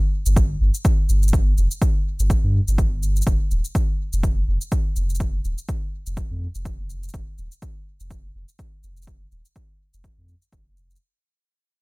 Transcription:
0.26 sub bass G1, cabasa
0.36 kick, cabasa
0.61 sub bass G1
0.74 cabasa
0.85 kick, cabasa
1.09 sub bass G1, cabasa
1.23 cabasa
1.28 cabasa
1.33 kick, cabasa
1.57 sub bass F1, cabasa
1.71 cabasa
1.82 kick, cabasa
2.19 sub bass G1, cabasa
2.30 kick, cabasa
2.43 sub bass G2
2.68 sub bass G1, cabasa
2.78 kick, cabasa
3.03 cabasa
3.16 cabasa
3.22 cabasa
3.27 sub bass F1, kick
3.51 sub bass D#1, cabasa
3.65 cabasa
3.75 kick, cabasa
4.13 sub bass F1, cabasa
4.23 kick, cabasa
4.48 sub bass F1
4.61 cabasa
4.72 kick, cabasa
4.96 sub bass F1, cabasa
5.10 cabasa
5.15 cabasa
5.20 kick, cabasa
5.44 sub bass D#1, cabasa
5.58 cabasa
5.69 kick, cabasa
6.06 sub bass F1, cabasa
6.17 kick, cabasa
6.30 sub bass F2
6.55 sub bass F1, cabasa
6.65 kick, cabasa
6.90 cabasa
7.03 cabasa
7.09 cabasa
7.14 sub bass F1, kick, cabasa
7.38 sub bass D#1, cabasa
7.52 cabasa
7.62 kick, cabasa
8.00 sub bass F1, cabasa
8.11 kick, cabasa
8.35 sub bass F1
8.48 cabasa
8.59 kick, cabasa
8.83 sub bass F1, cabasa
8.97 cabasa
9.02 cabasa
9.07 kick
9.32 sub bass D#1, cabasa
9.45 cabasa
9.56 kick, cabasa
9.94 sub bass F1, cabasa
10.04 kick, cabasa
10.18 sub bass F2
10.29 cabasa
10.42 cabasa
10.53 sub bass F1, kick, cabasa
10.77 cabasa
10.90 cabasa
10.96 cabasa

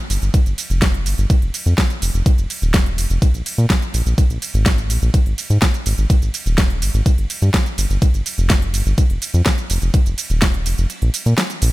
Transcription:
0.10 analog synth bass G1, open hi-hat, ride, shaker
0.22 analog synth bass G1, closed hi-hat, shaker
0.34 kick, closed hi-hat, ride, shaker
0.46 analog synth bass G1, closed hi-hat, shaker
0.58 open hi-hat, ride, shaker
0.70 analog synth bass F1, closed hi-hat, shaker
0.82 kick, snare, closed hi-hat, ride, shaker
0.94 closed hi-hat
1.06 analog synth bass G1, open hi-hat, ride, shaker
1.18 analog synth bass G1, closed hi-hat, shaker
1.30 kick, closed hi-hat, ride, shaker
1.42 analog synth bass F1, closed hi-hat
1.54 open hi-hat, ride, shaker
1.66 analog synth bass F2, closed hi-hat, shaker
1.78 kick, snare, closed hi-hat, ride, shaker
1.90 closed hi-hat, shaker
2.02 analog synth bass F1, open hi-hat, ride, shaker
2.14 analog synth bass F1, closed hi-hat, shaker
2.26 kick, closed hi-hat, ride, shaker
2.38 analog synth bass F1, closed hi-hat, shaker
2.50 open hi-hat, ride, shaker
2.62 analog synth bass D#1, closed hi-hat, shaker
2.74 kick, snare, closed hi-hat, ride, shaker
2.86 closed hi-hat
2.98 analog synth bass F1, open hi-hat, ride, shaker
3.10 analog synth bass F1, closed hi-hat, shaker
3.22 kick, closed hi-hat, ride, shaker
3.34 analog synth bass A#1, closed hi-hat, shaker
3.46 open hi-hat, ride, shaker
3.58 analog synth bass A#2, closed hi-hat, shaker
3.70 kick, snare, closed hi-hat, ride, shaker
3.82 closed hi-hat, shaker
3.94 analog synth bass A#1, open hi-hat, ride, shaker
4.06 analog synth bass A#1, closed hi-hat, shaker
4.18 kick, closed hi-hat, ride, shaker
4.30 analog synth bass A#1, closed hi-hat, shaker
4.42 open hi-hat, ride, shaker
4.54 analog synth bass G#1, closed hi-hat, shaker
4.66 kick, snare, closed hi-hat, ride, shaker
4.78 closed hi-hat, shaker
4.90 analog synth bass A#1, open hi-hat, ride, shaker
5.02 analog synth bass A#1, closed hi-hat, shaker
5.14 kick, closed hi-hat, ride, shaker
5.26 analog synth bass G#1, closed hi-hat
5.38 open hi-hat, ride, shaker
5.50 analog synth bass G#2, closed hi-hat, shaker
5.62 kick, snare, closed hi-hat, ride, shaker
5.74 closed hi-hat, shaker
5.86 analog synth bass G#1, open hi-hat, ride, shaker
5.98 analog synth bass G#1, closed hi-hat, shaker
6.10 kick, closed hi-hat, ride, shaker
6.22 analog synth bass G#1, closed hi-hat, shaker
6.34 open hi-hat, ride, shaker
6.46 analog synth bass D#1, closed hi-hat, shaker
6.58 kick, snare, closed hi-hat, ride, shaker
6.70 closed hi-hat
6.82 analog synth bass G#1, open hi-hat, ride, shaker
6.94 analog synth bass G#1, closed hi-hat, shaker
7.06 kick, closed hi-hat, ride, shaker
7.18 analog synth bass G1, closed hi-hat
7.30 open hi-hat, ride, shaker
7.42 analog synth bass G2, closed hi-hat, shaker
7.54 kick, snare, closed hi-hat, ride, shaker
7.66 closed hi-hat, shaker
7.78 analog synth bass G1, open hi-hat, ride, shaker
7.90 analog synth bass G1, closed hi-hat, shaker
8.02 kick, closed hi-hat, ride, shaker
8.14 analog synth bass G1, closed hi-hat, shaker
8.26 open hi-hat, ride, shaker
8.38 analog synth bass F1, closed hi-hat, shaker
8.50 kick, snare, closed hi-hat, ride, shaker
8.62 closed hi-hat
8.74 analog synth bass G1, open hi-hat, ride, shaker
8.86 analog synth bass G1, closed hi-hat, shaker
8.98 kick, closed hi-hat, ride, shaker
9.10 analog synth bass F1, closed hi-hat
9.22 open hi-hat, ride, shaker
9.34 analog synth bass F2, closed hi-hat, shaker
9.46 kick, snare, closed hi-hat, ride, shaker
9.58 closed hi-hat, shaker
9.70 analog synth bass F1, open hi-hat, ride, shaker
9.82 analog synth bass F1, closed hi-hat, shaker
9.94 kick, closed hi-hat, ride, shaker
10.06 analog synth bass F1, closed hi-hat, shaker
10.18 open hi-hat, ride, shaker
10.30 analog synth bass D#1, closed hi-hat, shaker
10.42 kick, snare, closed hi-hat, ride, shaker
10.54 closed hi-hat
10.66 analog synth bass F1, open hi-hat, ride, shaker
10.78 analog synth bass F1, closed hi-hat, shaker
10.90 closed hi-hat, ride, shaker
11.02 analog synth bass A#1, closed hi-hat
11.14 open hi-hat, ride, shaker
11.26 analog synth bass A#2, closed hi-hat, shaker
11.38 snare, closed hi-hat, ride, shaker
11.50 closed hi-hat, shaker
11.62 analog synth bass A#1, open hi-hat, ride, shaker

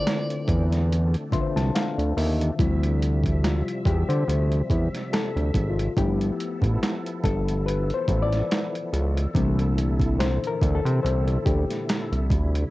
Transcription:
Already playing: reed electric piano D3 D4 E4 F4 B4 C5, tonewheel organ D3 A3 C4 D4, tenor saxophone D5
0.07 snare, closed hi-hat
0.30 closed hi-hat
0.48 analog synth bass E2, kick, closed hi-hat
0.72 snare, closed hi-hat
0.92 closed hi-hat
1.14 closed hi-hat
1.31 analog synth bass C2, reed electric piano D3 D4 F4 B4 E5 C6, kick, closed hi-hat
1.41 reed electric piano C5
1.56 analog synth bass C2, reed electric piano A5, snare, closed hi-hat
1.75 reed electric piano F5, snare, closed hi-hat
1.98 analog synth bass D2, closed hi-hat
2.17 analog synth bass D#2, reed electric piano E5, open hi-hat
2.41 closed hi-hat
2.58 analog synth bass D2, tonewheel organ C3 F3 G3 E5, reed electric piano F3 G3 C4 E4, kick, closed hi-hat
2.83 closed hi-hat
3.03 closed hi-hat
3.24 kick, closed hi-hat
3.44 reed electric piano F4, snare, closed hi-hat
3.68 closed hi-hat
3.86 analog synth bass E2, reed electric piano G4, kick, closed hi-hat
4.09 analog synth bass D3, reed electric piano C5, closed hi-hat
4.28 analog synth bass D2, closed hi-hat
4.52 closed hi-hat
4.70 analog synth bass E2, kick, closed hi-hat
4.95 snare, closed hi-hat
5.13 reed electric piano A4, snare, closed hi-hat
5.36 analog synth bass D2, closed hi-hat
5.54 analog synth bass G#1, kick, closed hi-hat
5.70 reed electric piano F4
5.79 closed hi-hat
5.97 analog synth bass G1, reed electric piano F3 A3 B3 E4 G4, tonewheel organ F3 B3 E4 A4, kick, closed hi-hat
6.21 closed hi-hat
6.40 closed hi-hat
6.62 analog synth bass A1, kick, closed hi-hat
6.83 snare, closed hi-hat
7.06 closed hi-hat
7.24 analog synth bass G1, reed electric piano A4, kick, closed hi-hat
7.49 closed hi-hat
7.66 reed electric piano B4, closed hi-hat
7.90 closed hi-hat
7.94 reed electric piano C5
8.08 analog synth bass A1, kick, closed hi-hat
8.23 reed electric piano D5
8.33 snare, closed hi-hat
8.51 snare, closed hi-hat
8.75 closed hi-hat
8.93 analog synth bass C#2, closed hi-hat
9.17 closed hi-hat
9.33 analog synth bass C2, tonewheel organ A#2 D3 E4, reed electric piano E3 A3 A#3 D4, kick, closed hi-hat
9.59 closed hi-hat
9.78 closed hi-hat
10.00 kick, closed hi-hat
10.19 reed electric piano C5, snare, closed hi-hat
10.44 reed electric piano A#4, closed hi-hat
10.62 analog synth bass D2, kick, closed hi-hat
10.75 reed electric piano A4
10.85 analog synth bass C3, closed hi-hat
11.03 analog synth bass C2, reed electric piano C5, closed hi-hat
11.27 closed hi-hat
11.45 analog synth bass D2, reed electric piano G4, kick, closed hi-hat
11.70 snare, closed hi-hat
11.89 snare, closed hi-hat
12.12 analog synth bass C2, closed hi-hat
12.30 analog synth bass D2, tonewheel organ C3 D3 G3, kick, closed hi-hat
12.55 closed hi-hat

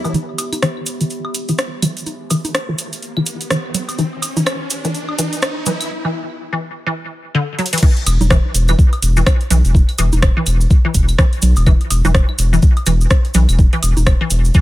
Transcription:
Already playing: ambient pad B3 G4 E5 B5, swell
0.04 sub bass E1, synth arpeggio sound E3, cabasa, high woodblock
0.14 synth arpeggio sound E3, closed hi-hat, riser, low bongo, cabasa
0.38 sub bass E1, closed hi-hat, cabasa, high woodblock
0.53 sub bass E1, closed hi-hat, low bongo, cabasa, claves
0.62 synth arpeggio sound E3, cross-stick, closed hi-hat, cabasa
0.86 sub bass E1, closed hi-hat, cabasa
1.01 synth arpeggio sound E3, closed hi-hat, cabasa
1.10 closed hi-hat, cabasa
1.25 high woodblock
1.34 sub bass E1, closed hi-hat, cabasa
1.48 synth arpeggio sound E3, closed hi-hat, cabasa
1.58 cross-stick, closed hi-hat, cabasa
1.82 sub bass B1, synth arpeggio sound E3, closed hi-hat, low conga, cabasa, claves
1.97 sub bass E1, closed hi-hat, cabasa
2.06 closed hi-hat, low bongo, cabasa
2.30 sub bass E1, synth arpeggio sound E3, closed hi-hat, cabasa, high woodblock
2.45 sub bass E1, closed hi-hat, low bongo, cabasa
2.55 cross-stick, closed hi-hat, cabasa
2.69 synth arpeggio sound E3
2.78 sub bass E1, closed hi-hat, cabasa
2.93 closed hi-hat, cabasa
3.02 closed hi-hat, cabasa
3.17 synth arpeggio sound E3, claves
3.26 sub bass E1, closed hi-hat, cabasa
3.41 closed hi-hat, cabasa
3.50 synth arpeggio sound E3, cross-stick, closed hi-hat, cabasa
3.74 sub bass B1, closed hi-hat, low conga, cabasa
3.89 sub bass E1, closed hi-hat, cabasa, high woodblock
3.98 synth arpeggio sound E3, closed hi-hat, low bongo, cabasa
4.22 sub bass E1, closed hi-hat, cabasa, high woodblock
4.37 sub bass E1, synth arpeggio sound E3, closed hi-hat, low bongo, cabasa
4.46 cross-stick, closed hi-hat, cabasa, claves
4.70 sub bass E1, closed hi-hat, cabasa
4.85 synth arpeggio sound E3, closed hi-hat, cabasa
4.95 closed hi-hat, cabasa
5.09 high woodblock
5.19 sub bass E1, synth arpeggio sound E3, closed hi-hat, cabasa
5.33 closed hi-hat, cabasa
5.42 cross-stick, closed hi-hat, cabasa
5.66 sub bass B1, synth arpeggio sound E3, closed hi-hat, low conga, cabasa
5.81 sub bass E1, closed hi-hat, cabasa, claves
6.05 synth arpeggio sound E3
6.53 synth arpeggio sound E3
6.87 synth arpeggio sound E3
7.35 synth arpeggio sound D3
7.59 synth arpeggio sound F#3, closed hi-hat
7.66 closed hi-hat
7.73 synth arpeggio sound E3, closed hi-hat
7.78 closed hi-hat
7.83 synth arpeggio sound E3, kick, crash, low bongo, cabasa
7.97 closed hi-hat
8.06 sub bass E1, closed hi-hat, cabasa, claves, high woodblock
8.21 sub bass E1, closed hi-hat, low bongo, low conga, cabasa
8.30 synth arpeggio sound E3, kick, cross-stick, closed hi-hat, cabasa
8.54 sub bass E1, closed hi-hat, cabasa
8.68 synth arpeggio sound E3, cabasa, claves
8.79 kick, cabasa
8.93 closed hi-hat, high woodblock
9.02 sub bass E1, closed hi-hat, cabasa
9.17 synth arpeggio sound E3, cabasa
9.26 kick, cross-stick, cabasa, claves
9.41 closed hi-hat
9.50 sub bass B1, synth arpeggio sound E3, closed hi-hat, low conga, cabasa
9.65 sub bass E1, closed hi-hat, cabasa
9.75 kick, low bongo, cabasa
9.89 closed hi-hat, claves
9.98 sub bass E1, synth arpeggio sound E3, closed hi-hat, cabasa, high woodblock
10.13 sub bass E1, closed hi-hat, low bongo, cabasa
10.22 kick, cross-stick, closed hi-hat, cabasa
10.37 synth arpeggio sound E3
10.46 sub bass E1, closed hi-hat, cabasa, claves
10.61 cabasa
10.70 kick, cabasa
10.85 synth arpeggio sound E3
10.94 sub bass E1, kick, closed hi-hat, cabasa
11.08 closed hi-hat, cabasa, claves
11.18 synth arpeggio sound E3, kick, cross-stick, cabasa
11.33 closed hi-hat
11.42 sub bass B1, closed hi-hat, low conga, cabasa
11.56 sub bass E1, closed hi-hat, cabasa, high woodblock
11.66 synth arpeggio sound E3, kick, low bongo, cabasa, claves
11.81 closed hi-hat
11.90 sub bass E1, closed hi-hat, cabasa, high woodblock
12.05 sub bass E1, synth arpeggio sound E3, closed hi-hat, low bongo, low conga, cabasa
12.15 kick, cross-stick, closed hi-hat, cabasa
12.29 claves
12.38 sub bass E1, closed hi-hat, cabasa
12.53 synth arpeggio sound E3, cabasa
12.62 kick, cabasa
12.77 closed hi-hat, high woodblock
12.86 sub bass E1, synth arpeggio sound E3, closed hi-hat, cabasa, claves
13.01 cabasa
13.10 kick, cross-stick, cabasa
13.25 closed hi-hat
13.34 sub bass B1, synth arpeggio sound E3, closed hi-hat, low conga, cabasa
13.49 sub bass E1, closed hi-hat, cabasa, claves
13.59 kick, low bongo, cabasa
13.73 synth arpeggio sound E3, closed hi-hat
13.83 sub bass E1, closed hi-hat, cabasa, high woodblock
13.97 sub bass E1, closed hi-hat, low bongo, cabasa
14.06 kick, cross-stick, closed hi-hat, cabasa, claves
14.21 synth arpeggio sound E3
14.30 sub bass E1, closed hi-hat, cabasa
14.45 cabasa
14.54 synth arpeggio sound E3, kick, cabasa

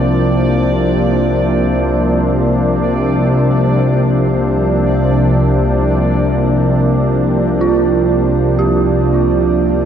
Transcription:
Already playing: synth drone C2 C3, analog synth pad C3 F3 A#3 D4, synth texture D5
7.61 synth bell F4
8.59 synth bell G4

